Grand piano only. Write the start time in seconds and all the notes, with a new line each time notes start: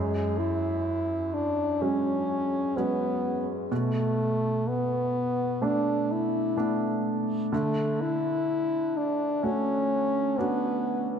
Already playing: F#2
1.81 F#3 G#3 C#4
2.77 F#3 G#3 C#4
3.71 B2
5.62 A3 B3 D4
6.57 A3 B3 D4
7.52 D3
9.43 A3 C#4 F#4
10.38 C#4 D4 F#4